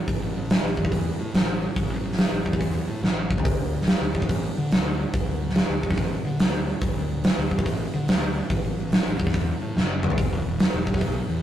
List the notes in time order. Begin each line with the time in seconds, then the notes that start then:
0.08 A1, kick, open hi-hat
0.22 A1
0.50 snare, open hi-hat
0.63 A1
0.77 E2, kick
0.85 kick
0.92 kick, open hi-hat
1.19 A2
1.34 A1, snare, open hi-hat
1.76 A1, kick, open hi-hat
1.90 A1
2.12 snare
2.18 snare, open hi-hat
2.32 A1
2.46 E2, kick
2.53 kick
2.61 kick, open hi-hat
2.88 A2
3.03 A1, snare
3.31 kick
3.38 floor tom
3.45 D2, kick, open hi-hat
3.59 D2
3.81 snare
3.87 snare, open hi-hat
4.01 D2
4.15 A1, kick
4.22 kick
4.29 kick, open hi-hat
4.57 D3
4.72 D2, snare, open hi-hat
5.14 D2, kick, open hi-hat
5.27 D2
5.49 snare
5.55 snare, open hi-hat
5.69 D2
5.83 A1, kick
5.91 kick, snare
5.97 kick, open hi-hat
6.25 D3
6.39 D2, snare, open hi-hat
6.81 D2, kick, open hi-hat
6.96 D2
7.24 snare, open hi-hat
7.38 D2
7.51 A1, kick
7.59 kick
7.66 kick, open hi-hat
7.94 D3
8.08 D2, snare, open hi-hat
8.50 A1, kick, open hi-hat
8.64 A1
8.92 snare, open hi-hat
9.06 A1
9.20 E2, kick
9.27 kick, snare
9.34 kick, open hi-hat
9.61 A2
9.76 F#1, snare
10.03 mid tom
10.10 floor tom
10.18 E1, kick, open hi-hat
10.32 E1
10.59 snare, open hi-hat
10.74 E1
10.87 B1, kick
10.94 kick, snare
11.01 kick, open hi-hat
11.29 E2